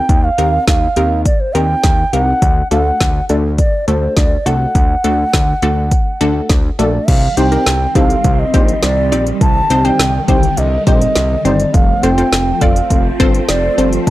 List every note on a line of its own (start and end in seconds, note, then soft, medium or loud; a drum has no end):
0.00 0.25 G5 loud
0.09 0.30 D#2 loud
0.09 kick loud
0.09 closed hi-hat medium
0.24 0.67 F5 loud
0.38 0.59 D#2 medium
0.38 0.64 C4 medium
0.38 0.64 D#4 medium
0.38 0.64 G4 medium
0.38 0.64 A#4 medium
0.38 closed hi-hat medium
0.68 0.88 D#2 loud
0.68 1.22 F5 medium
0.68 kick loud
0.68 snare loud
0.68 closed hi-hat medium
0.96 1.27 D#2 loud
0.96 1.23 C4 medium
0.96 1.23 D#4 medium
0.96 1.23 G4 medium
0.96 1.23 A#4 medium
0.96 closed hi-hat medium
1.25 1.42 D5 medium
1.25 kick loud
1.25 closed hi-hat medium
1.40 1.56 C5 medium
1.55 1.75 D#2 loud
1.55 1.81 C4 medium
1.55 1.81 D#4 medium
1.55 1.81 G4 medium
1.55 1.81 A#4 medium
1.55 2.15 G5 loud
1.55 closed hi-hat medium
1.84 2.04 D#2 loud
1.84 kick loud
1.84 snare loud
1.84 closed hi-hat medium
2.13 2.33 C2 medium
2.13 2.39 C4 medium
2.13 2.39 D#4 medium
2.13 2.39 G4 medium
2.13 2.39 A#4 medium
2.13 2.71 F#5 loud
2.13 closed hi-hat medium
2.42 2.62 D2 loud
2.42 kick loud
2.42 closed hi-hat medium
2.71 2.92 D2 medium
2.71 2.97 A3 medium
2.71 2.97 D4 medium
2.71 2.97 F#4 medium
2.71 2.97 A4 medium
2.71 3.25 F#5 loud
2.71 closed hi-hat medium
3.01 3.21 D2 loud
3.01 kick loud
3.01 snare loud
3.01 closed hi-hat medium
3.29 3.60 D2 loud
3.29 3.56 A3 medium
3.29 3.56 D4 medium
3.29 3.56 F#4 medium
3.29 3.56 A4 medium
3.29 3.36 D5 medium
3.29 closed hi-hat medium
3.58 3.86 D5 medium
3.58 kick loud
3.58 closed hi-hat medium
3.88 4.08 D2 loud
3.88 4.14 A3 medium
3.88 4.14 D4 medium
3.88 4.14 F#4 medium
3.88 4.14 A4 medium
3.88 4.18 C5 medium
3.88 closed hi-hat medium
4.17 4.37 D2 medium
4.17 4.48 D5 medium
4.17 kick loud
4.17 snare loud
4.17 closed hi-hat medium
4.46 4.66 C2 medium
4.46 4.72 A3 medium
4.46 4.72 D4 medium
4.46 4.72 F#4 medium
4.46 4.72 A4 medium
4.46 6.50 F#5 medium
4.46 closed hi-hat medium
4.75 4.95 D2 loud
4.75 kick loud
4.75 closed hi-hat medium
5.04 5.25 D2 loud
5.04 5.30 A3 medium
5.04 5.30 D4 medium
5.04 5.30 F#4 medium
5.04 5.30 A4 medium
5.04 closed hi-hat medium
5.33 5.54 D2 loud
5.33 kick loud
5.33 snare loud
5.33 closed hi-hat medium
5.62 5.93 D2 medium
5.62 5.89 A3 medium
5.62 5.89 D4 medium
5.62 5.89 F#4 medium
5.62 5.89 A4 medium
5.62 closed hi-hat medium
5.91 kick loud
5.91 closed hi-hat medium
6.21 6.41 D2 medium
6.21 6.47 A3 medium
6.21 6.47 D4 medium
6.21 6.47 F#4 medium
6.21 6.47 A4 loud
6.21 closed hi-hat medium
6.49 6.70 D2 loud
6.49 kick loud
6.49 snare loud
6.49 closed hi-hat medium
6.79 6.99 A#1 medium
6.79 7.05 A3 medium
6.79 7.05 D4 medium
6.79 7.05 F#4 medium
6.79 7.05 A4 medium
6.79 7.10 D5 medium
6.79 closed hi-hat medium
7.08 7.29 C2 loud
7.08 11.70 D#3 medium
7.08 11.70 G3 medium
7.08 9.39 C4 medium
7.08 7.39 F5 medium
7.08 kick loud
7.08 closed hi-hat medium
7.08 crash medium
7.37 7.58 C2 loud
7.37 7.50 C4 medium
7.37 7.50 D#4 medium
7.37 7.50 G4 medium
7.37 7.50 C5 medium
7.37 7.97 G5 loud
7.37 closed hi-hat medium
7.52 7.78 C4 medium
7.52 7.78 D#4 medium
7.52 7.78 G4 medium
7.52 7.78 A#4 medium
7.52 closed hi-hat soft
7.66 7.87 C2 loud
7.66 snare loud
7.66 closed hi-hat medium
7.95 8.16 C2 loud
7.95 8.22 C4 medium
7.95 8.22 D#4 medium
7.95 8.22 G4 medium
7.95 8.22 A4 medium
7.95 8.41 F5 loud
7.95 kick loud
7.95 closed hi-hat medium
8.10 closed hi-hat medium
8.24 8.45 C2 loud
8.24 kick medium
8.24 closed hi-hat medium
8.39 8.85 D#5 medium
8.54 8.74 A#1 medium
8.54 8.80 C4 medium
8.54 8.80 D#4 medium
8.54 8.80 G4 medium
8.54 8.80 C5 medium
8.54 kick medium
8.54 closed hi-hat medium
8.68 closed hi-hat medium
8.83 9.13 C2 loud
8.83 9.27 D5 medium
8.83 snare loud
8.83 closed hi-hat medium
9.12 9.32 A#1 medium
9.12 9.38 C4 medium
9.12 9.38 D#4 medium
9.12 9.38 G4 medium
9.12 9.38 D5 medium
9.12 closed hi-hat medium
9.27 closed hi-hat medium
9.41 9.62 C2 loud
9.41 11.72 D3 medium
9.41 9.87 A5 loud
9.41 kick loud
9.41 closed hi-hat medium
9.70 9.91 C2 loud
9.70 9.83 C4 medium
9.70 9.83 D#4 medium
9.70 9.83 G4 medium
9.70 9.83 C5 medium
9.70 closed hi-hat medium
9.85 10.11 C4 medium
9.85 10.11 D#4 medium
9.85 10.11 G4 medium
9.85 10.11 C5 medium
9.85 10.28 G5 loud
9.85 closed hi-hat soft
9.99 10.20 C2 loud
9.99 snare loud
9.99 closed hi-hat medium
10.28 10.49 C2 loud
10.28 10.55 C4 medium
10.28 10.55 D#4 medium
10.28 10.55 G4 medium
10.28 10.55 C5 medium
10.28 10.59 G5 loud
10.28 kick loud
10.28 closed hi-hat medium
10.43 closed hi-hat medium
10.57 10.78 C2 loud
10.57 10.86 D#5 medium
10.57 closed hi-hat medium
10.87 11.07 A#1 medium
10.87 11.13 C4 medium
10.87 11.13 D#4 medium
10.87 11.13 G4 medium
10.87 11.13 C5 medium
10.87 11.47 D#5 loud
10.87 kick medium
10.87 closed hi-hat medium
11.01 closed hi-hat medium
11.16 11.36 C2 loud
11.16 snare loud
11.16 closed hi-hat medium
11.45 11.65 G1 medium
11.45 11.71 C4 medium
11.45 11.71 D#4 medium
11.45 11.71 G4 medium
11.45 11.71 C5 medium
11.45 11.76 D5 medium
11.45 closed hi-hat medium
11.60 closed hi-hat medium
11.74 11.95 F1 loud
11.74 14.10 F3 medium
11.74 14.10 A3 medium
11.74 14.10 C4 medium
11.74 12.05 F5 medium
11.74 kick loud
11.74 closed hi-hat medium
12.03 12.24 F1 loud
12.03 12.16 C4 medium
12.03 12.16 F4 medium
12.03 12.16 A4 medium
12.03 12.16 C5 medium
12.03 12.63 G5 loud
12.03 closed hi-hat medium
12.18 12.44 C4 medium
12.18 12.44 F4 medium
12.18 12.44 A4 medium
12.18 12.44 C5 medium
12.18 closed hi-hat soft
12.32 12.53 F1 loud
12.32 snare loud
12.32 closed hi-hat medium
12.61 12.82 F1 medium
12.61 12.88 C4 medium
12.61 12.88 F4 medium
12.61 12.88 A4 medium
12.61 12.88 D5 medium
12.61 13.05 F5 medium
12.61 kick loud
12.61 closed hi-hat medium
12.76 closed hi-hat medium
12.90 13.11 F1 loud
12.90 kick medium
12.90 closed hi-hat medium
13.20 13.40 G1 loud
13.20 13.46 C4 medium
13.20 13.46 F4 medium
13.20 13.46 A4 medium
13.20 13.46 C5 loud
13.20 kick medium
13.20 closed hi-hat medium
13.34 closed hi-hat medium
13.49 13.69 F1 loud
13.49 13.89 D5 medium
13.49 snare loud
13.49 closed hi-hat medium
13.78 13.98 G1 medium
13.78 14.04 C4 medium
13.78 14.04 F4 medium
13.78 14.04 A4 medium
13.78 14.04 C5 medium
13.78 closed hi-hat medium
13.93 closed hi-hat medium
14.07 14.10 A5 loud